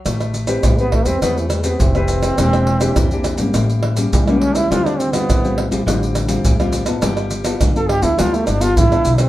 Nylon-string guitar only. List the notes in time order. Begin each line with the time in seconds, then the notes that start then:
0.06 A3
0.47 C4 G4 B4
0.64 E3
0.79 C4 G4 B4
1.06 C4 G4 B4
1.22 A3 C4 G4 B4
1.64 C4 G4 B4
1.80 E3
1.95 C4 G4 B4
2.39 E3 A#3 D4 G4
2.81 A#3 D4 G4
2.97 E3
3.12 A#3 D4 G4
3.38 G3 A#3 C#4
3.55 A2
3.97 G3 A#3 C#4
4.13 E3
4.28 G3 A#3 C#4
4.71 D3 G3 C4 F4
5.13 G3 C4 F4
5.29 A2
5.44 G3 C4 F4
5.71 G3 C4 F4
5.86 D3 G3 C4 F4
6.28 G3 C4 F4
6.45 A2
6.60 G3 C4 F4
6.87 B3 F4 A4
7.03 G3
7.45 B3 F4 A4
7.61 D3
7.76 B3 F4 A4
8.02 B3 F4 A4
8.17 G3 B3 F4 A4
8.60 B3 F4 A4
8.77 D3
8.91 B3 F4 A4